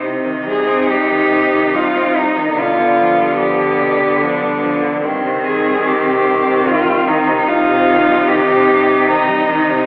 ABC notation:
X:1
M:3/4
L:1/16
Q:1/4=73
K:Cm
V:1 name="Cello"
z2 A2 G4 F2 E2 | F4 G4 D4 | z2 A2 G4 F2 E2 | F4 G4 E4 |]
V:2 name="Cello"
E12 | =B,12 | C12 | E12 |]
V:3 name="Cello" clef=bass
C, E, G, C G, E, C, E, G, C G, E, | =B,, D, F, G, F, D, B,, D, F, G, F, D, | G,, C, E, G, E, C, G,, C, E, G, E, C, | G,, C, E, G, E, C, G,, C, E, G, E, C, |]
V:4 name="Cello" clef=bass
C,12 | D,12 | E,12 | C,12 |]